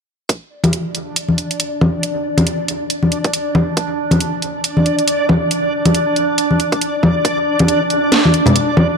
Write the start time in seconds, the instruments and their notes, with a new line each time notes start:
0.29 synth texture D4 D5, kick, closed hi-hat
0.64 closed hi-hat, high conga
0.73 closed hi-hat
0.95 closed hi-hat
1.16 closed hi-hat
1.28 high conga
1.38 closed hi-hat
1.51 closed hi-hat
1.60 closed hi-hat
1.81 kick, high conga
2.03 closed hi-hat
2.38 closed hi-hat, high conga
2.47 closed hi-hat
2.68 closed hi-hat
2.90 closed hi-hat
3.03 high conga
3.12 closed hi-hat
3.24 kick, closed hi-hat
3.33 closed hi-hat
3.55 kick, high conga
3.77 kick, closed hi-hat
4.11 closed hi-hat, high conga
4.20 closed hi-hat
4.42 closed hi-hat
4.64 closed hi-hat
4.77 high conga
4.86 closed hi-hat
4.99 closed hi-hat
5.08 closed hi-hat
5.29 kick, high conga
5.51 closed hi-hat
5.85 closed hi-hat, high conga
5.95 closed hi-hat
6.16 closed hi-hat
6.38 closed hi-hat
6.51 high conga
6.60 closed hi-hat
6.72 kick, closed hi-hat
6.81 closed hi-hat
7.03 kick, high conga
7.25 kick, closed hi-hat
7.59 closed hi-hat, high conga
7.68 closed hi-hat
7.90 closed hi-hat
8.12 snare, closed hi-hat
8.25 high conga
8.34 closed hi-hat
8.46 closed hi-hat, low conga
8.56 closed hi-hat
8.77 kick, high conga